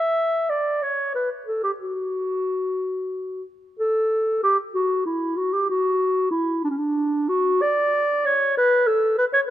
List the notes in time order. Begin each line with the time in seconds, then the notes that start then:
Already playing: E5
0.50 D5
0.82 C#5
1.15 B4
1.46 A4
1.63 G4
1.80 F#4
3.79 A4
4.43 G4
4.74 F#4
5.05 E4
5.36 F#4
5.53 G4
5.69 F#4
6.31 E4
6.64 D4
6.70 C#4
6.77 D4
7.28 F#4
7.62 D5
8.26 C#5
8.57 B4
8.87 A4
9.18 B4
9.33 C#5